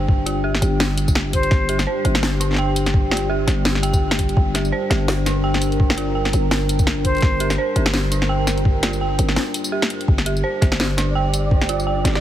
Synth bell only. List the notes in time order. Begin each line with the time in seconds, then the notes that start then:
Already playing: D4 G4 C5 G5
0.26 F4
0.44 G4
1.69 G4
1.87 C5
2.04 G4
2.40 D4
2.58 G5
3.12 F4
3.29 G4
3.83 G5
4.54 G4
4.72 C5
4.90 G4
5.26 D4
5.44 G5
5.97 F4
6.15 G5
7.40 G4
7.58 C5
7.76 G4
8.11 D4
8.29 G5
8.83 F4
9.01 G5
9.72 G4
10.26 G4
10.44 C5
10.61 G4
10.97 D4
11.15 G5
11.69 F4
11.87 G5